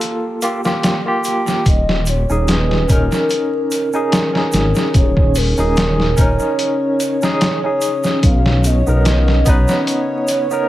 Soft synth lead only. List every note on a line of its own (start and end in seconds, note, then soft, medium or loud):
1.67 2.10 D#5 medium
2.08 2.51 C#5 medium
2.49 2.92 B4 medium
2.90 4.13 A#4 loud
4.14 4.97 A#4 medium
4.96 5.38 C#5 loud
5.37 6.21 A#4 loud
6.19 7.42 C#5 loud
7.44 8.21 C#5 loud
8.26 8.68 F5 loud
8.66 9.50 D#5 loud
9.49 9.89 C#5 loud
9.90 10.69 C#5 loud